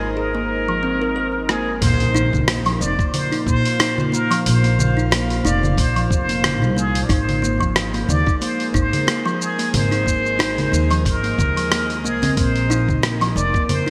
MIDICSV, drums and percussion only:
0, 0, Header, 1, 3, 480
1, 0, Start_track
1, 0, Tempo, 659341
1, 1326, Time_signature, 4, 2, 24, 8
1, 10119, End_track
2, 0, Start_track
2, 0, Title_t, "Udu"
2, 9967, Note_on_c, 9, 64, 90
2, 10040, Note_off_c, 9, 64, 0
2, 10119, End_track
3, 0, Start_track
3, 0, Title_t, "Drums"
3, 1085, Note_on_c, 9, 37, 67
3, 1158, Note_off_c, 9, 37, 0
3, 1324, Note_on_c, 9, 36, 111
3, 1324, Note_on_c, 9, 46, 71
3, 1331, Note_on_c, 9, 82, 44
3, 1396, Note_off_c, 9, 36, 0
3, 1397, Note_off_c, 9, 46, 0
3, 1404, Note_off_c, 9, 82, 0
3, 1458, Note_on_c, 9, 46, 31
3, 1465, Note_on_c, 9, 82, 22
3, 1531, Note_off_c, 9, 46, 0
3, 1538, Note_off_c, 9, 82, 0
3, 1571, Note_on_c, 9, 82, 82
3, 1644, Note_off_c, 9, 82, 0
3, 1696, Note_on_c, 9, 36, 60
3, 1697, Note_on_c, 9, 64, 70
3, 1704, Note_on_c, 9, 82, 33
3, 1769, Note_off_c, 9, 36, 0
3, 1770, Note_off_c, 9, 64, 0
3, 1777, Note_off_c, 9, 82, 0
3, 1804, Note_on_c, 9, 37, 110
3, 1804, Note_on_c, 9, 46, 71
3, 1811, Note_on_c, 9, 82, 43
3, 1877, Note_off_c, 9, 37, 0
3, 1877, Note_off_c, 9, 46, 0
3, 1884, Note_off_c, 9, 82, 0
3, 1937, Note_on_c, 9, 46, 33
3, 1944, Note_on_c, 9, 82, 23
3, 2010, Note_off_c, 9, 46, 0
3, 2017, Note_off_c, 9, 82, 0
3, 2050, Note_on_c, 9, 82, 76
3, 2122, Note_off_c, 9, 82, 0
3, 2176, Note_on_c, 9, 36, 108
3, 2183, Note_on_c, 9, 82, 37
3, 2249, Note_off_c, 9, 36, 0
3, 2256, Note_off_c, 9, 82, 0
3, 2284, Note_on_c, 9, 46, 69
3, 2284, Note_on_c, 9, 64, 81
3, 2291, Note_on_c, 9, 82, 44
3, 2357, Note_off_c, 9, 46, 0
3, 2357, Note_off_c, 9, 64, 0
3, 2364, Note_off_c, 9, 82, 0
3, 2420, Note_on_c, 9, 46, 33
3, 2427, Note_on_c, 9, 82, 21
3, 2493, Note_off_c, 9, 46, 0
3, 2500, Note_off_c, 9, 82, 0
3, 2523, Note_on_c, 9, 36, 105
3, 2532, Note_on_c, 9, 82, 74
3, 2595, Note_off_c, 9, 36, 0
3, 2605, Note_off_c, 9, 82, 0
3, 2661, Note_on_c, 9, 46, 49
3, 2668, Note_on_c, 9, 82, 33
3, 2733, Note_off_c, 9, 46, 0
3, 2740, Note_off_c, 9, 82, 0
3, 2766, Note_on_c, 9, 37, 100
3, 2766, Note_on_c, 9, 46, 69
3, 2773, Note_on_c, 9, 82, 44
3, 2839, Note_off_c, 9, 37, 0
3, 2839, Note_off_c, 9, 46, 0
3, 2846, Note_off_c, 9, 82, 0
3, 2898, Note_on_c, 9, 64, 78
3, 2905, Note_on_c, 9, 82, 22
3, 2971, Note_off_c, 9, 64, 0
3, 2978, Note_off_c, 9, 82, 0
3, 3013, Note_on_c, 9, 82, 80
3, 3085, Note_off_c, 9, 82, 0
3, 3141, Note_on_c, 9, 46, 47
3, 3148, Note_on_c, 9, 82, 34
3, 3214, Note_off_c, 9, 46, 0
3, 3221, Note_off_c, 9, 82, 0
3, 3249, Note_on_c, 9, 46, 73
3, 3256, Note_on_c, 9, 82, 50
3, 3322, Note_off_c, 9, 46, 0
3, 3329, Note_off_c, 9, 82, 0
3, 3379, Note_on_c, 9, 46, 30
3, 3386, Note_on_c, 9, 82, 22
3, 3452, Note_off_c, 9, 46, 0
3, 3459, Note_off_c, 9, 82, 0
3, 3487, Note_on_c, 9, 64, 80
3, 3494, Note_on_c, 9, 82, 82
3, 3560, Note_off_c, 9, 64, 0
3, 3567, Note_off_c, 9, 82, 0
3, 3630, Note_on_c, 9, 82, 33
3, 3702, Note_off_c, 9, 82, 0
3, 3729, Note_on_c, 9, 37, 106
3, 3729, Note_on_c, 9, 46, 71
3, 3736, Note_on_c, 9, 82, 45
3, 3802, Note_off_c, 9, 37, 0
3, 3802, Note_off_c, 9, 46, 0
3, 3809, Note_off_c, 9, 82, 0
3, 3861, Note_on_c, 9, 46, 31
3, 3868, Note_on_c, 9, 82, 24
3, 3934, Note_off_c, 9, 46, 0
3, 3941, Note_off_c, 9, 82, 0
3, 3975, Note_on_c, 9, 82, 79
3, 4048, Note_off_c, 9, 82, 0
3, 4102, Note_on_c, 9, 64, 79
3, 4109, Note_on_c, 9, 82, 36
3, 4175, Note_off_c, 9, 64, 0
3, 4182, Note_off_c, 9, 82, 0
3, 4205, Note_on_c, 9, 36, 110
3, 4209, Note_on_c, 9, 46, 70
3, 4216, Note_on_c, 9, 82, 48
3, 4277, Note_off_c, 9, 36, 0
3, 4282, Note_off_c, 9, 46, 0
3, 4289, Note_off_c, 9, 82, 0
3, 4341, Note_on_c, 9, 46, 31
3, 4349, Note_on_c, 9, 82, 22
3, 4414, Note_off_c, 9, 46, 0
3, 4421, Note_off_c, 9, 82, 0
3, 4444, Note_on_c, 9, 36, 108
3, 4455, Note_on_c, 9, 82, 84
3, 4517, Note_off_c, 9, 36, 0
3, 4528, Note_off_c, 9, 82, 0
3, 4580, Note_on_c, 9, 46, 45
3, 4587, Note_on_c, 9, 82, 35
3, 4653, Note_off_c, 9, 46, 0
3, 4660, Note_off_c, 9, 82, 0
3, 4689, Note_on_c, 9, 37, 112
3, 4689, Note_on_c, 9, 46, 65
3, 4689, Note_on_c, 9, 64, 79
3, 4696, Note_on_c, 9, 82, 45
3, 4761, Note_off_c, 9, 37, 0
3, 4761, Note_off_c, 9, 46, 0
3, 4761, Note_off_c, 9, 64, 0
3, 4768, Note_off_c, 9, 82, 0
3, 4828, Note_on_c, 9, 82, 22
3, 4901, Note_off_c, 9, 82, 0
3, 4935, Note_on_c, 9, 82, 82
3, 5008, Note_off_c, 9, 82, 0
3, 5062, Note_on_c, 9, 46, 49
3, 5069, Note_on_c, 9, 82, 36
3, 5135, Note_off_c, 9, 46, 0
3, 5142, Note_off_c, 9, 82, 0
3, 5165, Note_on_c, 9, 36, 124
3, 5168, Note_on_c, 9, 46, 66
3, 5175, Note_on_c, 9, 82, 47
3, 5238, Note_off_c, 9, 36, 0
3, 5241, Note_off_c, 9, 46, 0
3, 5248, Note_off_c, 9, 82, 0
3, 5305, Note_on_c, 9, 46, 29
3, 5305, Note_on_c, 9, 64, 69
3, 5312, Note_on_c, 9, 82, 23
3, 5378, Note_off_c, 9, 46, 0
3, 5378, Note_off_c, 9, 64, 0
3, 5385, Note_off_c, 9, 82, 0
3, 5416, Note_on_c, 9, 82, 80
3, 5489, Note_off_c, 9, 82, 0
3, 5538, Note_on_c, 9, 36, 68
3, 5550, Note_on_c, 9, 82, 34
3, 5611, Note_off_c, 9, 36, 0
3, 5622, Note_off_c, 9, 82, 0
3, 5648, Note_on_c, 9, 37, 105
3, 5648, Note_on_c, 9, 46, 68
3, 5655, Note_on_c, 9, 82, 49
3, 5721, Note_off_c, 9, 37, 0
3, 5721, Note_off_c, 9, 46, 0
3, 5728, Note_off_c, 9, 82, 0
3, 5782, Note_on_c, 9, 46, 31
3, 5789, Note_on_c, 9, 82, 24
3, 5855, Note_off_c, 9, 46, 0
3, 5862, Note_off_c, 9, 82, 0
3, 5887, Note_on_c, 9, 64, 72
3, 5894, Note_on_c, 9, 82, 78
3, 5960, Note_off_c, 9, 64, 0
3, 5967, Note_off_c, 9, 82, 0
3, 6019, Note_on_c, 9, 36, 116
3, 6029, Note_on_c, 9, 82, 38
3, 6092, Note_off_c, 9, 36, 0
3, 6102, Note_off_c, 9, 82, 0
3, 6128, Note_on_c, 9, 46, 65
3, 6135, Note_on_c, 9, 82, 49
3, 6200, Note_off_c, 9, 46, 0
3, 6207, Note_off_c, 9, 82, 0
3, 6261, Note_on_c, 9, 46, 30
3, 6268, Note_on_c, 9, 82, 22
3, 6334, Note_off_c, 9, 46, 0
3, 6341, Note_off_c, 9, 82, 0
3, 6366, Note_on_c, 9, 36, 110
3, 6375, Note_on_c, 9, 82, 79
3, 6439, Note_off_c, 9, 36, 0
3, 6447, Note_off_c, 9, 82, 0
3, 6503, Note_on_c, 9, 46, 46
3, 6503, Note_on_c, 9, 64, 74
3, 6510, Note_on_c, 9, 82, 37
3, 6576, Note_off_c, 9, 46, 0
3, 6576, Note_off_c, 9, 64, 0
3, 6583, Note_off_c, 9, 82, 0
3, 6610, Note_on_c, 9, 37, 104
3, 6610, Note_on_c, 9, 46, 64
3, 6617, Note_on_c, 9, 82, 46
3, 6683, Note_off_c, 9, 37, 0
3, 6683, Note_off_c, 9, 46, 0
3, 6690, Note_off_c, 9, 82, 0
3, 6751, Note_on_c, 9, 82, 23
3, 6824, Note_off_c, 9, 82, 0
3, 6856, Note_on_c, 9, 82, 78
3, 6929, Note_off_c, 9, 82, 0
3, 6983, Note_on_c, 9, 46, 46
3, 6991, Note_on_c, 9, 82, 37
3, 7056, Note_off_c, 9, 46, 0
3, 7063, Note_off_c, 9, 82, 0
3, 7090, Note_on_c, 9, 46, 62
3, 7090, Note_on_c, 9, 64, 76
3, 7097, Note_on_c, 9, 82, 45
3, 7163, Note_off_c, 9, 46, 0
3, 7163, Note_off_c, 9, 64, 0
3, 7170, Note_off_c, 9, 82, 0
3, 7223, Note_on_c, 9, 46, 29
3, 7230, Note_on_c, 9, 82, 22
3, 7296, Note_off_c, 9, 46, 0
3, 7303, Note_off_c, 9, 82, 0
3, 7327, Note_on_c, 9, 36, 67
3, 7337, Note_on_c, 9, 82, 83
3, 7400, Note_off_c, 9, 36, 0
3, 7410, Note_off_c, 9, 82, 0
3, 7470, Note_on_c, 9, 82, 34
3, 7543, Note_off_c, 9, 82, 0
3, 7571, Note_on_c, 9, 37, 99
3, 7571, Note_on_c, 9, 46, 63
3, 7578, Note_on_c, 9, 82, 45
3, 7644, Note_off_c, 9, 37, 0
3, 7644, Note_off_c, 9, 46, 0
3, 7651, Note_off_c, 9, 82, 0
3, 7704, Note_on_c, 9, 46, 30
3, 7704, Note_on_c, 9, 64, 75
3, 7711, Note_on_c, 9, 82, 24
3, 7777, Note_off_c, 9, 46, 0
3, 7777, Note_off_c, 9, 64, 0
3, 7784, Note_off_c, 9, 82, 0
3, 7817, Note_on_c, 9, 82, 80
3, 7889, Note_off_c, 9, 82, 0
3, 7944, Note_on_c, 9, 46, 30
3, 7951, Note_on_c, 9, 82, 37
3, 8016, Note_off_c, 9, 46, 0
3, 8023, Note_off_c, 9, 82, 0
3, 8048, Note_on_c, 9, 36, 113
3, 8052, Note_on_c, 9, 46, 66
3, 8059, Note_on_c, 9, 82, 47
3, 8120, Note_off_c, 9, 36, 0
3, 8125, Note_off_c, 9, 46, 0
3, 8132, Note_off_c, 9, 82, 0
3, 8183, Note_on_c, 9, 46, 29
3, 8190, Note_on_c, 9, 82, 22
3, 8256, Note_off_c, 9, 46, 0
3, 8263, Note_off_c, 9, 82, 0
3, 8288, Note_on_c, 9, 36, 112
3, 8289, Note_on_c, 9, 64, 75
3, 8296, Note_on_c, 9, 82, 82
3, 8361, Note_off_c, 9, 36, 0
3, 8362, Note_off_c, 9, 64, 0
3, 8369, Note_off_c, 9, 82, 0
3, 8425, Note_on_c, 9, 46, 44
3, 8432, Note_on_c, 9, 82, 34
3, 8498, Note_off_c, 9, 46, 0
3, 8505, Note_off_c, 9, 82, 0
3, 8529, Note_on_c, 9, 37, 104
3, 8529, Note_on_c, 9, 46, 63
3, 8537, Note_on_c, 9, 82, 44
3, 8602, Note_off_c, 9, 37, 0
3, 8602, Note_off_c, 9, 46, 0
3, 8609, Note_off_c, 9, 82, 0
3, 8664, Note_on_c, 9, 46, 29
3, 8671, Note_on_c, 9, 82, 22
3, 8737, Note_off_c, 9, 46, 0
3, 8744, Note_off_c, 9, 82, 0
3, 8777, Note_on_c, 9, 82, 81
3, 8849, Note_off_c, 9, 82, 0
3, 8903, Note_on_c, 9, 46, 44
3, 8903, Note_on_c, 9, 64, 77
3, 8910, Note_on_c, 9, 82, 36
3, 8975, Note_off_c, 9, 46, 0
3, 8975, Note_off_c, 9, 64, 0
3, 8982, Note_off_c, 9, 82, 0
3, 9007, Note_on_c, 9, 36, 118
3, 9007, Note_on_c, 9, 46, 63
3, 9014, Note_on_c, 9, 82, 45
3, 9080, Note_off_c, 9, 36, 0
3, 9080, Note_off_c, 9, 46, 0
3, 9087, Note_off_c, 9, 82, 0
3, 9141, Note_on_c, 9, 46, 30
3, 9148, Note_on_c, 9, 82, 21
3, 9213, Note_off_c, 9, 46, 0
3, 9220, Note_off_c, 9, 82, 0
3, 9254, Note_on_c, 9, 82, 79
3, 9327, Note_off_c, 9, 82, 0
3, 9379, Note_on_c, 9, 36, 62
3, 9382, Note_on_c, 9, 64, 71
3, 9389, Note_on_c, 9, 82, 30
3, 9452, Note_off_c, 9, 36, 0
3, 9455, Note_off_c, 9, 64, 0
3, 9462, Note_off_c, 9, 82, 0
3, 9488, Note_on_c, 9, 37, 105
3, 9488, Note_on_c, 9, 46, 66
3, 9495, Note_on_c, 9, 82, 46
3, 9561, Note_off_c, 9, 37, 0
3, 9561, Note_off_c, 9, 46, 0
3, 9568, Note_off_c, 9, 82, 0
3, 9623, Note_on_c, 9, 46, 33
3, 9630, Note_on_c, 9, 82, 23
3, 9696, Note_off_c, 9, 46, 0
3, 9703, Note_off_c, 9, 82, 0
3, 9735, Note_on_c, 9, 82, 73
3, 9808, Note_off_c, 9, 82, 0
3, 9858, Note_on_c, 9, 36, 115
3, 9867, Note_on_c, 9, 82, 36
3, 9931, Note_off_c, 9, 36, 0
3, 9940, Note_off_c, 9, 82, 0
3, 9968, Note_on_c, 9, 46, 68
3, 9968, Note_on_c, 9, 64, 85
3, 9975, Note_on_c, 9, 82, 45
3, 10041, Note_off_c, 9, 46, 0
3, 10041, Note_off_c, 9, 64, 0
3, 10048, Note_off_c, 9, 82, 0
3, 10119, End_track
0, 0, End_of_file